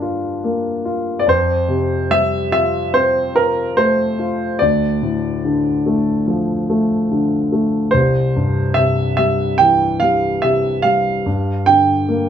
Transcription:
0.00 1.23 G2 soft
0.00 1.29 D3 soft
0.00 0.40 A#3 soft
0.00 1.23 D4 soft
0.00 0.02 F4 soft
0.00 0.84 F4 soft
0.44 1.25 A#3 soft
0.85 1.26 F4 soft
1.19 1.27 D5 medium
1.27 4.56 F2 medium
1.27 2.14 C5 medium
1.68 3.31 C3 soft
2.11 3.73 G3 soft
2.11 2.51 E5 medium
2.52 3.33 F4 soft
2.52 2.95 E5 medium
2.93 4.56 C4 soft
2.93 3.32 C5 medium
3.35 4.18 F4 soft
3.35 3.78 A#4 medium
3.77 4.58 A3 soft
3.77 4.63 C5 medium
4.19 4.59 F4 soft
4.59 7.90 D2 medium
4.59 6.22 D5 medium
5.03 6.65 A2 soft
5.45 7.07 D3 soft
5.86 6.68 A3 soft
6.27 7.90 F3 soft
6.70 7.51 A3 soft
7.12 7.92 D3 soft
7.52 7.93 A3 soft
7.91 11.23 C2 soft
7.91 8.78 C5 medium
8.36 9.98 G2 soft
8.74 10.39 C3 soft
8.74 9.15 E5 medium
9.17 10.00 G3 soft
9.17 9.61 E5 medium
9.58 11.23 E3 soft
9.58 10.02 G5 medium
10.00 10.83 G3 soft
10.00 10.44 F5 medium
10.42 11.24 C3 soft
10.42 10.86 E5 medium
10.82 11.25 G3 soft
10.82 11.70 F5 medium
11.26 12.29 G2 soft
11.66 12.29 D3 soft
11.66 12.29 G5 medium
12.09 12.29 A#3 soft

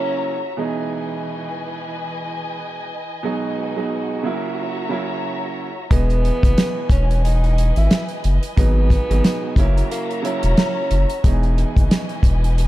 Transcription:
0.00 0.35 C#3 medium
0.00 0.35 F#3 medium
0.00 0.36 A#3 medium
0.00 0.54 C#4 medium
0.00 0.36 E4 loud
0.00 0.56 F#4 medium
0.00 0.56 C#5 medium
0.00 0.56 E5 medium
0.00 0.56 A#5 loud
0.57 2.88 B2 loud
0.57 3.21 E3 medium
0.57 2.88 E3 medium
0.57 2.89 G#3 medium
0.57 2.89 D#4 loud
0.57 3.21 B4 medium
0.57 4.20 D#5 medium
0.57 4.20 G#5 medium
3.23 3.71 B2 loud
3.23 3.72 F#3 medium
3.23 3.72 G#3 medium
3.23 3.73 D#4 loud
3.23 5.88 F#4 medium
3.23 4.23 B4 medium
3.75 4.24 B2 loud
3.75 4.23 F#3 medium
3.75 4.24 G#3 medium
3.75 4.25 D#4 loud
4.23 4.86 C#3 medium
4.23 4.86 F#3 medium
4.23 4.87 A#3 loud
4.23 4.87 E4 loud
4.23 5.89 C#5 medium
4.23 5.89 E5 medium
4.23 5.89 A#5 medium
4.89 5.68 C#3 medium
4.89 5.69 F#3 medium
4.89 5.69 A#3 medium
4.89 5.69 E4 loud
5.90 6.31 E1 loud
5.90 8.21 B2 loud
5.90 8.21 E3 medium
5.90 8.55 E3 medium
5.90 8.22 G#3 medium
5.90 6.87 B3 loud
5.90 9.54 B4 medium
5.90 9.54 D#5 medium
5.90 8.22 D#5 loud
5.90 8.55 G#5 medium
5.90 kick loud
5.90 closed hi-hat medium
6.10 closed hi-hat soft
6.25 closed hi-hat medium
6.43 6.54 F#1 medium
6.43 kick loud
6.43 closed hi-hat medium
6.58 snare loud
6.58 closed hi-hat loud
6.90 7.72 E1 medium
6.90 7.21 C#4 medium
6.90 kick loud
6.90 closed hi-hat medium
7.11 closed hi-hat medium
7.24 7.73 D#4 medium
7.24 closed hi-hat medium
7.44 closed hi-hat soft
7.58 closed hi-hat medium
7.76 7.88 G#1 loud
7.76 8.07 E4 medium
7.76 closed hi-hat medium
7.91 snare loud
7.91 closed hi-hat medium
8.09 closed hi-hat soft
8.24 8.39 F#1 medium
8.24 closed hi-hat medium
8.43 closed hi-hat medium
8.56 8.97 G#1 loud
8.56 9.05 B2 loud
8.56 9.05 F#3 medium
8.56 9.06 G#3 medium
8.56 9.54 B3 loud
8.56 9.06 D#4 loud
8.56 11.22 F#4 medium
8.56 9.57 G#5 medium
8.56 kick loud
8.56 closed hi-hat medium
8.90 kick loud
8.90 closed hi-hat medium
9.09 9.21 G#1 loud
9.09 9.57 B2 loud
9.09 9.56 F#3 medium
9.09 9.58 G#3 medium
9.09 9.58 D#4 loud
9.09 closed hi-hat medium
9.24 snare loud
9.24 closed hi-hat loud
9.56 9.82 F#1 loud
9.56 10.19 C#3 medium
9.56 10.20 F#3 medium
9.56 10.20 A#3 loud
9.56 9.87 C#4 medium
9.56 10.20 E4 loud
9.56 11.23 C#5 medium
9.56 11.23 E5 medium
9.56 11.23 A#5 loud
9.56 kick loud
9.56 closed hi-hat medium
9.78 closed hi-hat medium
9.91 10.21 A#3 loud
9.91 closed hi-hat medium
10.11 closed hi-hat soft
10.23 11.02 C#3 loud
10.23 11.02 F#3 medium
10.23 11.02 A#3 medium
10.23 11.21 C#4 medium
10.23 11.03 E4 loud
10.23 closed hi-hat medium
10.43 10.54 E1 loud
10.43 closed hi-hat medium
10.57 snare loud
10.57 closed hi-hat medium
10.91 11.05 F#1 loud
10.91 closed hi-hat medium
11.10 closed hi-hat medium
11.24 11.64 E1 loud
11.24 12.68 B2 loud
11.24 12.68 E3 medium
11.24 12.68 G#3 medium
11.24 12.68 D#4 loud
11.24 12.68 B4 medium
11.24 12.68 D#5 medium
11.24 12.68 G#5 medium
11.24 kick loud
11.24 closed hi-hat loud
11.43 closed hi-hat soft
11.58 closed hi-hat medium
11.76 11.87 F#1 medium
11.76 kick loud
11.76 closed hi-hat medium
11.91 snare loud
11.91 closed hi-hat loud
12.09 closed hi-hat soft
12.23 12.68 E1 loud
12.23 kick loud
12.23 closed hi-hat medium
12.44 closed hi-hat medium
12.58 closed hi-hat medium

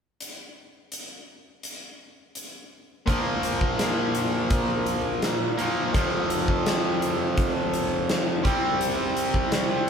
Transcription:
0.21 closed hi-hat soft
0.92 closed hi-hat soft
1.63 closed hi-hat soft
2.35 closed hi-hat soft
3.06 5.55 A#2 medium
3.06 5.56 F3 medium
3.06 5.56 A#3 medium
3.06 kick medium
3.06 closed hi-hat medium
3.43 closed hi-hat soft
3.61 kick medium
3.79 snare medium
3.79 closed hi-hat medium
4.15 closed hi-hat soft
4.50 kick medium
4.50 closed hi-hat medium
4.86 closed hi-hat medium
5.22 snare medium
5.22 closed hi-hat medium
5.57 5.93 A#2 medium
5.57 5.92 F3 medium
5.57 5.91 A#3 medium
5.57 closed hi-hat soft
5.93 8.42 F2 medium
5.93 8.42 C3 medium
5.93 8.43 F3 medium
5.93 kick medium
5.93 closed hi-hat medium
6.30 closed hi-hat medium
6.48 kick medium
6.66 snare medium
6.66 closed hi-hat medium
7.02 closed hi-hat soft
7.37 kick medium
7.37 closed hi-hat medium
7.73 closed hi-hat soft
8.09 snare medium
8.09 closed hi-hat medium
8.43 9.90 C3 medium
8.43 9.90 G3 medium
8.43 9.90 C4 medium
8.43 kick medium
8.43 closed hi-hat soft
8.81 closed hi-hat medium
9.17 closed hi-hat soft
9.34 kick medium
9.52 snare medium
9.52 closed hi-hat medium

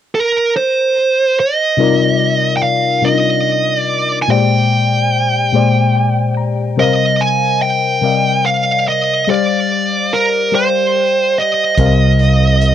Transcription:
0.15 0.52 A#4 medium
0.57 1.40 C5 medium
1.40 2.57 D#5 medium
1.77 2.54 C3 medium
1.77 2.54 G3 medium
1.77 2.54 D#4 medium
1.77 2.55 F4 medium
1.77 2.55 A#4 medium
1.77 2.56 D5 medium
2.57 2.62 G5 soft
2.63 3.05 F5 medium
3.02 3.79 C3 medium
3.02 3.79 G3 medium
3.02 3.10 D4 soft
3.02 3.80 F4 medium
3.02 3.80 A#4 medium
3.02 3.79 D#5 medium
3.02 3.80 D#5 medium
3.10 3.83 D#4 medium
3.79 4.18 D5 medium
4.22 4.28 G#5 medium
4.28 5.04 A#2 medium
4.28 5.04 G#3 medium
4.28 5.05 G4 medium
4.28 5.05 C5 medium
4.28 5.06 D5 medium
4.28 6.34 G5 medium
5.52 6.29 A#2 medium
5.52 6.29 G#3 medium
5.52 6.30 G4 medium
5.52 6.30 C5 medium
5.52 6.30 D5 medium
5.95 6.34 G5 medium
6.37 6.75 A#5 medium
6.77 7.54 C3 medium
6.77 7.54 G3 medium
6.77 7.54 A#4 medium
6.77 7.55 C5 medium
6.77 7.55 D#5 medium
6.77 7.22 D#5 medium
6.77 7.55 F5 medium
7.21 7.62 G#5 loud
7.62 8.48 G5 medium
8.01 8.78 C3 medium
8.01 8.79 G3 medium
8.01 8.79 A#4 medium
8.01 8.80 D5 medium
8.01 8.80 D#5 soft
8.01 8.80 F5 medium
8.46 8.88 F5 medium
8.88 9.30 D#5 medium
9.27 10.04 G3 medium
9.27 10.04 G4 medium
9.27 10.05 C5 medium
9.27 10.15 D5 medium
9.27 10.05 D5 medium
9.27 10.06 F5 medium
10.14 10.55 A#4 medium
10.52 11.29 G3 medium
10.52 11.29 G4 medium
10.52 11.29 C5 medium
10.52 11.40 C5 medium
10.52 11.30 D5 medium
10.52 11.30 G5 medium
11.38 12.75 D#5 medium
11.78 12.75 C2 medium
11.78 12.54 C3 medium
11.78 12.54 G3 medium
11.78 12.55 A#4 medium
11.78 12.55 C5 medium
11.78 12.55 D#5 medium
11.78 12.56 F5 medium
11.78 kick medium
11.78 closed hi-hat medium
12.19 closed hi-hat soft
12.61 closed hi-hat soft

